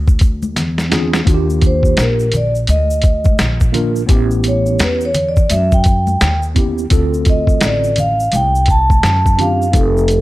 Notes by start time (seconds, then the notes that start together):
Already playing: D2
0.08 kick, shaker
0.19 kick, closed hi-hat, shaker
0.43 high conga, shaker
0.56 E2, snare, closed hi-hat, low conga, shaker
0.78 snare, shaker
0.90 C4 D4 F4 G#4, snare, closed hi-hat, low conga, shaker
1.13 snare, shaker
1.25 D#2 A#3 D4 F4 F#4, kick, closed hi-hat, shaker
1.34 G4
1.50 shaker
1.61 kick, closed hi-hat, shaker
1.66 C5
1.83 kick, shaker
1.97 A#1, snare, closed hi-hat, shaker
2.01 A#4
2.19 shaker
2.32 closed hi-hat, low conga, shaker
2.36 D5
2.55 shaker
2.67 D2 D#5, closed hi-hat, high conga, shaker
2.91 shaker
3.02 kick, closed hi-hat, shaker
3.24 kick, high conga, shaker
3.39 A#1, snare, closed hi-hat, low conga, shaker
3.60 kick, shaker
3.72 A#3 D4 F4 A#4, closed hi-hat, low conga, shaker
3.96 shaker
4.06 A1 B3 C#4 E4 G4, kick, closed hi-hat, shaker
4.31 shaker
4.44 closed hi-hat, shaker
4.48 C#5
4.66 shaker
4.79 E2, snare, closed hi-hat, shaker
4.83 B4
5.01 shaker
5.05 C#5
5.14 closed hi-hat, low conga, shaker
5.29 D5
5.36 kick, shaker
5.50 F#2 E5, closed hi-hat, high conga, shaker
5.72 G5, kick, shaker
5.84 kick, closed hi-hat, shaker
6.07 high conga, shaker
6.21 D#2, snare, closed hi-hat, low conga, shaker
6.43 shaker
6.55 B3 C#4 E4 G4, kick, closed hi-hat, low conga, shaker
6.78 shaker
6.90 D2 D3 C4 F4 A4, kick, closed hi-hat, shaker
7.14 shaker
7.25 kick, closed hi-hat, shaker
7.30 D#5
7.47 kick, shaker
7.61 A1, snare, closed hi-hat, shaker
7.65 D5
7.84 shaker
7.96 F5, closed hi-hat, low conga, shaker
8.20 shaker
8.32 C2 G5, closed hi-hat, high conga, shaker
8.55 shaker
8.66 kick, closed hi-hat, shaker
8.71 A5
8.90 kick, high conga, shaker
9.03 F#2, snare, closed hi-hat, low conga, shaker
9.26 kick, shaker
9.37 C4 D4 F4 G4, closed hi-hat, low conga, shaker
9.41 F5
9.62 shaker
9.71 F1 C4 D#4 G4 A4, kick, closed hi-hat, shaker
9.77 A4
9.97 shaker
10.08 closed hi-hat, shaker